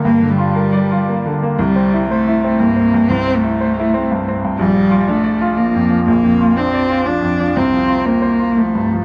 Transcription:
<<
  \new Staff \with { instrumentName = "Grand piano" } { \time 3/4 \key c \mixolydian \tempo 4 = 120 \tuplet 3/2 { <g, bes>8 d8 f'8 bes'8 d''8 f'8 bes8 d8 bes8 } | \tuplet 3/2 { c,8 c'8 e'8 c''8 e'8 c'8 g,8 c'8 g,8 } | \tuplet 3/2 { c,8 c'8 e'8 c''8 e'8 c'8 g,8 c'8 g,8 } | \tuplet 3/2 { bes,,8 f8 f'8 d'8 d''8 f'8 f8 f,8 f8 } |
\tuplet 3/2 { bes,,8 f,8 f'8 d'8 d''8 f'8 f8 f,8 f8 } | \tuplet 3/2 { c,8 f8 f'8 c'8 c''8 f'8 f8 g,8 f8 } | }
  \new Staff \with { instrumentName = "Cello" } { \time 3/4 \key c \mixolydian bes8 g2 r8 | g4 a4 bes4 | c'8 a2 r8 | g4 a4 bes4 |
bes4 c'4 d'4 | c'4 bes4 a4 | }
>>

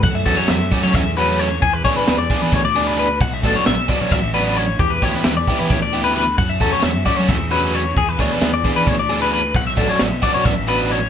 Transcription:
<<
  \new Staff \with { instrumentName = "Clean electric guitar" } { \time 7/8 \key fis \phrygian \tempo 4 = 132 fis''16 e''16 a'16 cis''16 e''8 d''16 cis''16 e''8 b'8 cis''8 | gis'16 b'16 cis''16 b'8 d''8 b'16 cis''16 d''8 b'16 b'8 | fis''16 e''16 a'16 cis''16 e''8 d''16 cis''16 e''8 b'8 cis''8 | g'16 b'16 cis''16 b'8 d''8 b'16 cis''16 d''8 b'16 b'8 |
fis''16 e''16 a'16 cis''16 e''8 d''16 cis''16 e''8 b'8 cis''8 | gis'16 b'16 cis''16 b'8 d''8 b'16 cis''16 d''8 b'16 b'8 | fis''16 e''16 a'16 cis''16 e''8 d''16 cis''16 e''8 b'8 cis''8 | }
  \new Staff \with { instrumentName = "Overdriven electric guitar" } { \time 7/8 \key fis \phrygian r8 <fis a cis' fis'>8 r8 <fis a cis' fis'>8 r8 <fis a cis' fis'>8 r8 | r8 <e b d' gis'>8 r8 <e b d' gis'>8 r8 <e b d' gis'>8 r8 | r8 <fis b d' fis'>8 r8 <fis b d' fis'>8 r8 <fis b d' fis'>8 r8 | r8 <e b e' g'>8 r8 <e b e' g'>8 r8 <e b e' g'>8 r8 |
r8 <fis a cis' fis'>8 r8 <fis a cis' fis'>8 r8 <fis a cis' fis'>8 r8 | r8 <e b d' gis'>8 r8 <e b d' gis'>8 r8 <e b d' gis'>8 r8 | r8 <fis b d' fis'>8 r8 <fis b d' fis'>8 r8 <fis b d' fis'>8 r8 | }
  \new Staff \with { instrumentName = "Clean electric guitar" } { \clef bass \time 7/8 \key fis \phrygian <fis a>2.~ <fis a>8 | r2. r8 | r2. r8 | r2. r8 |
r2. r8 | r2. r8 | r2. r8 | }
  \new Staff \with { instrumentName = "Fingered electric bass" } { \clef bass \time 7/8 \key fis \phrygian fis,8 e,16 r16 e,16 fis,16 r16 fis16 e,4. | e,8 d,16 r16 d,16 e,16 r16 e16 d,4. | b,,8 a,,16 r16 a,,16 b,,16 r16 b,16 a,,4. | e,8 d,16 r16 d,16 e,16 r16 e16 d,4. |
fis,8 e,16 r16 e,16 fis,16 r16 fis16 e,4. | e,8 d,16 r16 d,16 e,16 r16 e16 d,4. | b,,8 a,,16 r16 a,,16 b,,16 r16 b,16 a,,4. | }
  \new DrumStaff \with { instrumentName = "Drums" } \drummode { \time 7/8 <cymc bd>8 <bd cymr>8 <cymr sn>8 <bd cymr>8 <bd cymr sn>8 cymr8 cymr8 | <bd cymr>8 <bd cymr>8 <cymr sn>8 <bd cymr>8 <bd cymr>8 cymr8 cymr8 | <cymc bd>8 <bd cymr>8 <cymr sn>8 <bd cymr>8 <bd cymr>8 cymr8 cymr8 | <bd cymr>8 <bd cymr sn>8 <cymr sn>8 <bd cymr>8 <bd cymr>8 cymr8 <cymr sn>8 |
<cymc bd>8 <bd cymr sn>8 <cymr sn>8 <bd cymr sn>8 <bd cymr sn>8 cymr8 cymr8 | <bd cymr>8 <bd cymr>8 <cymr sn>8 <bd cymr>8 <bd cymr>8 <cymr sn>8 cymr8 | <cymc bd>8 <bd cymr>8 <cymr sn>8 <bd cymr>8 <bd cymr sn>8 cymr8 <cymr sn>8 | }
>>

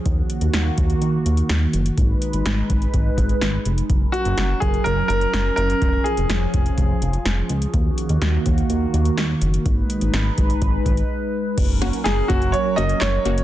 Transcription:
<<
  \new Staff \with { instrumentName = "Grand piano" } { \time 4/4 \key fis \major \tempo 4 = 125 r1 | r1 | r8 fis'4 gis'8 ais'8 ais'4 ais'8~ | ais'8 gis'2. r8 |
r1 | r1 | r4 gis'8 fis'8 cis''8 dis''8 cis''4 | }
  \new Staff \with { instrumentName = "Analog synth pad" } { \time 4/4 \key fis \major << { <dis fis'>1 | <gis b'>1 | <fis ais'>1 | <eis gis'>1 |
<dis fis'>1 | <gis b'>1 | <fis ais'>1 | } \\ { ais1 | dis'1 | cis'1~ | cis'1 |
ais1 | dis'1 | cis'1 | } >> }
  \new Staff \with { instrumentName = "Synth pluck" } { \time 4/4 \key fis \major r1 | r1 | r1 | r1 |
r1 | r1 | r8 <ais cis' fis'>8 r8 <ais cis' fis'>8 r8 <ais cis' fis'>8 r8 <ais cis' fis'>8 | }
  \new Staff \with { instrumentName = "Analog synth bass" } { \clef bass \time 4/4 \key fis \major dis,8 r16 dis,16 dis,8 dis,8 dis,8 dis,8 dis,8 fis,,8 | gis,,8 r16 gis,,16 gis,,8 gis,,8 gis,,8 gis,,8 gis,,8 eis,,8 | fis,,8 r16 fis,,16 fis,,8 fis,,8 fis,,8 fis,,8 fis,,8 fis,,8 | eis,,8 r16 eis,,16 eis,,8 eis,,8 eis,,8 eis,,8 eis,,8 cis,8 |
dis,8 r16 dis,16 dis,8 dis,8 dis,8 dis,8 dis,8 fis,,8 | gis,,8 r16 gis,,16 gis,,8 gis,,8 gis,,8 gis,,8 r4 | fis,,4 fis,,8 fis,,8. r16 fis,,8 fis,,8 fis,,8 | }
  \new DrumStaff \with { instrumentName = "Drums" } \drummode { \time 4/4 <hh bd>8 hh16 hh16 <hh sn>8 <hh bd>16 hh16 hh8 hh16 hh16 <hh sn>8 hh16 hh16 | <hh bd>8 hh16 hh16 <hh sn>8 <hh bd>16 hh16 <hh bd>8 <hh bd>16 hh16 <hh sn>8 hh16 hh16 | <hh bd>8 hh16 hh16 <hh sn>8 <hh bd>16 hh16 hh8 hh16 hh16 <hh sn>8 hh16 hh16 | <hh bd>8 hh16 hh16 <hh sn>8 <hh bd>16 hh16 <hh bd>8 hh16 hh16 <hh sn>8 hh16 hh16 |
<hh bd>8 hh16 hh16 <hh sn>8 <hh bd>16 hh16 hh8 hh16 hh16 <hh sn>8 hh16 hh16 | <hh bd>8 hh16 hh16 <hh sn>8 <hh bd>16 hh16 <hh bd>8 <hh bd>16 hh16 r4 | <cymc hh bd>8 hh16 hh16 <hh sn>8 <hh bd>16 hh16 hh8 hh16 hh16 <hc hh sn>8 hh16 hh16 | }
>>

